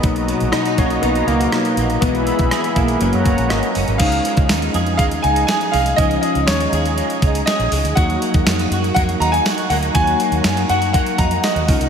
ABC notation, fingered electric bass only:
X:1
M:4/4
L:1/16
Q:1/4=121
K:B
V:1 name="Fingered electric bass" clef=bass
B,,,3 A,,, z2 B,,,2 B,,,2 C,,2 z2 A,,,2 | B,,,3 B,,, z2 B,,,2 F,,, F,, F,,, A,,, G,,, z F,,, G,,, | [K:Db] D,,2 z D,, E,,2 F,,2 E,,2 D,,2 z2 C,,2 | D,,2 z D,, E,,2 E,,3 z D,,2 z B,,, D,, =D,, |
E,,2 z E,, F,,2 G,,2 F,,2 E,,2 z2 =D,,2 | E,,2 z E,, G,,2 G,,3 z F,,2 z E,, D,, C,, |]